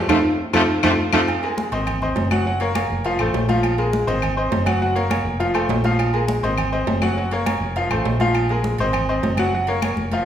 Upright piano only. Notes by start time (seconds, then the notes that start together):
0.09 C4 F4 A4
0.53 C4 F4 A4
0.84 C4 F4 A4
1.13 C4 F4 A4
1.43 G#3 G#4 A#4
1.72 C4 C5 D#5
2.02 C4 C5 D#5
2.31 F#3 F#4 F#5
2.46 F#3 F#4 F#5
2.61 A#3 A#4 C#5
2.75 A#3 A#4 C#5
3.05 F3 F4 F5
3.20 A3 A4 C5
3.49 F3 F4 F5
3.78 G#3 G#4 A#4
4.07 C4 C5 D#5
4.37 C4 C5 D#5
4.66 F#3 F#4 F#5
4.81 F#3 F#4 F#5
4.95 A#3 A#4 C#5
5.10 A#3 A#4 C#5
5.40 F3 F4 F5
5.54 A3 A4 C5
5.84 F3 F4 F5
6.13 G#3 G#4 A#4
6.43 C4 C5 D#5
6.72 C4 C5 D#5
7.02 F#3 F#4 F#5
7.17 F#3 F#4 F#5
7.33 A#3 A#4 C#5
7.47 A#3 A#4 C#5
7.76 F3 F4 F5
7.91 A3 A4 C5
8.20 F3 F4 F5
8.50 G#3 G#4 A#4
8.80 C4 C5 D#5
9.09 C4 C5 D#5
9.39 F#3 F#4 F#5
9.54 F#3 F#4 F#5
9.68 A#3 A#4 C#5
9.84 A#3 A#4 C#5
10.13 F3 F4 F5